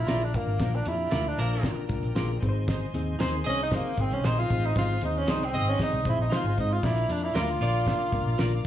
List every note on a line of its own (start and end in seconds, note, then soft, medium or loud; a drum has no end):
0.00 0.25 E4 medium
0.00 2.37 A#4 medium
0.00 2.38 D5 medium
0.00 2.38 A#5 medium
0.07 0.38 A#1 loud
0.07 0.29 A#3 medium
0.07 0.29 D4 medium
0.07 0.21 F4 medium
0.07 0.29 F4 medium
0.07 0.29 G#4 medium
0.07 0.21 A#4 medium
0.07 0.22 D5 medium
0.07 snare loud
0.07 closed hi-hat medium
0.24 0.37 D4 medium
0.34 0.77 A#3 medium
0.34 0.56 A#3 medium
0.34 0.56 D4 medium
0.34 0.56 F4 medium
0.34 0.56 A#4 medium
0.34 kick medium
0.34 closed hi-hat medium
0.46 0.57 G#1 medium
0.58 0.81 A#1 medium
0.58 1.35 A#2 medium
0.58 0.71 F3 medium
0.58 0.81 A#3 loud
0.58 0.71 D4 medium
0.58 0.81 D4 medium
0.58 0.81 F4 medium
0.58 0.71 A#4 medium
0.58 0.81 A#4 loud
0.58 2.39 G5 medium
0.58 kick loud
0.58 snare loud
0.58 closed hi-hat medium
0.75 0.89 D4 medium
0.85 1.07 F2 loud
0.85 1.07 A#3 medium
0.85 1.07 D4 medium
0.85 1.29 E4 medium
0.85 1.07 F4 medium
0.85 1.07 G4 medium
0.85 closed hi-hat medium
1.11 1.32 D2 medium
1.11 1.33 A#3 medium
1.11 1.32 D4 medium
1.11 1.25 F4 medium
1.11 1.33 F4 medium
1.11 1.25 A#4 medium
1.11 1.33 A#4 medium
1.11 1.26 D5 medium
1.11 snare loud
1.11 closed hi-hat medium
1.27 1.39 D4 medium
1.38 1.69 A#1 medium
1.38 1.75 F3 medium
1.38 1.59 A#3 medium
1.38 1.64 A#3 medium
1.38 1.58 D4 medium
1.38 1.76 D4 loud
1.38 1.58 F4 medium
1.38 1.58 A#4 medium
1.38 1.75 A#4 loud
1.38 closed hi-hat medium
1.63 1.85 A#3 medium
1.63 1.85 D4 medium
1.63 1.84 F4 medium
1.63 1.84 A#4 loud
1.63 kick medium
1.63 snare loud
1.63 closed hi-hat medium
1.89 2.00 C2 loud
1.89 2.10 A#3 medium
1.89 2.10 D4 medium
1.89 2.10 F4 medium
1.89 2.10 A#4 medium
1.89 kick loud
1.89 closed hi-hat medium
2.03 2.13 A#1 medium
2.03 closed hi-hat soft
2.15 2.36 A#1 medium
2.15 2.36 A#3 medium
2.15 2.36 D4 medium
2.15 2.36 F4 medium
2.15 2.29 F4 medium
2.15 2.36 G#4 medium
2.15 2.29 A#4 medium
2.15 2.30 D5 medium
2.15 snare loud
2.15 closed hi-hat medium
2.40 2.84 G#1 medium
2.40 3.16 G#2 medium
2.40 2.84 C4 medium
2.40 2.84 D#4 medium
2.40 2.84 G#4 medium
2.40 2.49 B4 medium
2.40 6.78 C5 medium
2.40 6.78 D#5 medium
2.40 6.78 G#5 medium
2.40 6.78 C6 medium
2.40 kick medium
2.40 closed hi-hat medium
2.49 2.87 C5 loud
2.67 2.79 G#3 medium
2.67 2.79 D#4 medium
2.67 2.79 C5 medium
2.67 kick loud
2.67 snare loud
2.67 closed hi-hat medium
2.94 3.14 D#2 medium
2.94 3.15 C4 medium
2.94 3.14 D#4 medium
2.94 3.15 G#4 medium
2.94 3.15 D#5 medium
2.94 closed hi-hat medium
3.19 3.40 D#2 medium
3.19 3.40 C4 medium
3.19 3.33 D#4 loud
3.19 3.40 D#4 medium
3.19 3.33 G#4 loud
3.19 3.40 G#4 medium
3.19 3.40 A#4 medium
3.19 3.34 C5 loud
3.19 snare loud
3.19 closed hi-hat medium
3.45 3.77 C2 medium
3.45 3.83 C4 medium
3.45 3.67 C4 medium
3.45 3.67 D#4 medium
3.45 3.82 G#4 medium
3.45 3.67 G#4 medium
3.45 3.67 C5 medium
3.45 3.82 D#5 loud
3.45 closed hi-hat medium
3.49 3.60 C#4 medium
3.63 3.76 D#4 loud
3.72 4.03 A#3 medium
3.72 3.92 C4 medium
3.72 3.92 D#4 medium
3.72 3.92 G#4 medium
3.72 3.93 C5 loud
3.72 kick medium
3.72 snare loud
3.72 closed hi-hat medium
3.97 4.08 G#1 medium
3.97 4.19 C4 medium
3.97 4.15 C4 loud
3.97 4.19 D#4 medium
3.97 4.19 G#4 medium
3.97 4.19 C5 medium
3.97 kick loud
3.97 closed hi-hat medium
4.11 4.21 C2 medium
4.11 4.27 C#4 medium
4.11 closed hi-hat soft
4.23 4.45 A#1 loud
4.23 4.44 C4 medium
4.23 4.37 D#4 medium
4.23 4.44 D#4 medium
4.23 4.41 D#4 medium
4.23 4.38 G#4 medium
4.23 4.45 G#4 medium
4.23 4.45 A#4 medium
4.23 4.38 C5 medium
4.23 snare loud
4.23 closed hi-hat medium
4.39 4.67 F4 loud
4.50 4.71 A1 medium
4.50 5.24 G#2 medium
4.50 4.71 C4 medium
4.50 4.71 D#4 medium
4.50 4.71 G#4 medium
4.50 4.71 C5 medium
4.50 kick medium
4.50 closed hi-hat medium
4.66 4.77 D#4 loud
4.75 4.96 G#1 loud
4.75 4.87 G#3 medium
4.75 4.97 C4 medium
4.75 4.87 D#4 medium
4.75 4.97 D#4 medium
4.75 5.01 F4 loud
4.75 4.97 G#4 medium
4.75 4.87 C5 medium
4.75 4.97 C5 loud
4.75 kick loud
4.75 snare loud
4.75 closed hi-hat medium
5.01 5.22 D#2 loud
5.01 5.23 C4 medium
5.01 5.23 D#4 medium
5.01 5.19 D#4 medium
5.01 5.22 G#4 medium
5.01 5.23 C5 medium
5.01 closed hi-hat medium
5.18 5.32 C#4 medium
5.27 5.55 C2 medium
5.27 5.49 C4 medium
5.27 5.40 D#4 medium
5.27 5.48 D#4 medium
5.27 5.46 D#4 medium
5.27 5.41 G#4 loud
5.27 5.48 G#4 medium
5.27 5.42 C5 loud
5.27 5.48 D5 medium
5.27 snare loud
5.27 closed hi-hat medium
5.41 5.70 C4 medium
5.41 snare soft
5.52 5.74 G#1 medium
5.52 5.90 C4 medium
5.52 5.74 C4 medium
5.52 5.75 D#4 medium
5.52 5.90 G#4 medium
5.52 5.74 G#4 medium
5.52 5.75 C5 medium
5.52 5.90 D#5 loud
5.52 closed hi-hat medium
5.69 5.81 C#4 medium
5.79 6.00 C4 loud
5.79 6.00 D#4 medium
5.79 6.06 D#4 loud
5.79 6.00 G#4 medium
5.79 6.00 D5 loud
5.79 kick medium
5.79 snare loud
5.79 closed hi-hat medium
5.93 6.03 C2 medium
6.05 6.16 A#1 medium
6.05 6.26 C4 medium
6.05 6.26 D#4 medium
6.05 6.19 E4 medium
6.05 6.26 G#4 medium
6.05 6.26 C5 medium
6.05 kick loud
6.05 closed hi-hat medium
6.19 6.29 A#1 medium
6.19 6.35 D#4 medium
6.30 6.52 C4 medium
6.30 6.44 D#4 medium
6.30 6.52 D#4 medium
6.30 6.59 F4 medium
6.30 6.45 G#4 medium
6.30 6.52 G#4 medium
6.30 6.52 C5 medium
6.30 6.45 C5 medium
6.30 snare loud
6.30 closed hi-hat medium
6.44 6.54 G#1 medium
6.57 6.78 G#2 medium
6.57 6.78 C4 medium
6.57 6.77 D#4 medium
6.57 6.74 D#4 medium
6.57 6.78 G#4 medium
6.57 6.78 C5 medium
6.57 kick medium
6.57 closed hi-hat medium
6.73 6.86 F4 medium
6.83 7.04 A#1 loud
6.83 7.57 A#2 medium
6.83 6.94 A#3 medium
6.83 7.04 A#3 medium
6.83 7.04 D4 medium
6.83 7.13 E4 medium
6.83 6.94 F4 medium
6.83 7.04 F4 medium
6.83 7.04 A#4 medium
6.83 6.94 D5 medium
6.83 8.67 D5 medium
6.83 8.67 F5 medium
6.83 8.67 A#5 medium
6.83 8.67 D6 medium
6.83 kick loud
6.83 snare loud
6.83 closed hi-hat medium
6.97 closed hi-hat soft
7.09 7.29 F2 medium
7.09 7.30 A#3 medium
7.09 7.30 D4 medium
7.09 7.25 D4 medium
7.09 7.30 F4 medium
7.09 7.30 A#4 medium
7.09 closed hi-hat medium
7.24 7.36 E4 medium
7.34 7.55 D2 medium
7.34 7.55 A#3 medium
7.34 7.56 D4 medium
7.34 7.48 F4 medium
7.34 8.61 F4 medium
7.34 7.48 A#4 medium
7.34 7.55 A#4 medium
7.34 7.49 D5 loud
7.34 snare loud
7.34 closed hi-hat medium
7.61 7.91 A#1 medium
7.61 7.98 A#3 medium
7.61 7.82 A#3 medium
7.61 7.82 D4 medium
7.61 7.98 F4 medium
7.61 7.82 F4 medium
7.61 7.82 A#4 medium
7.61 7.98 D5 loud
7.61 closed hi-hat medium
7.87 8.08 A#3 medium
7.87 8.07 D4 medium
7.87 8.08 F4 medium
7.87 8.08 A#4 loud
7.87 kick medium
7.87 snare loud
7.87 closed hi-hat medium
8.12 8.23 C2 loud
8.12 8.33 A#3 medium
8.12 8.34 D4 medium
8.12 8.34 F4 medium
8.12 8.34 A#4 loud
8.12 kick loud
8.12 closed hi-hat medium
8.26 8.36 A#1 medium
8.38 8.59 A#1 loud
8.38 8.59 A#3 medium
8.38 8.59 D4 medium
8.38 8.51 F4 medium
8.38 8.59 F4 medium
8.38 8.52 A#4 medium
8.38 8.59 A#4 medium
8.38 8.52 D5 medium
8.38 snare loud
8.38 closed hi-hat medium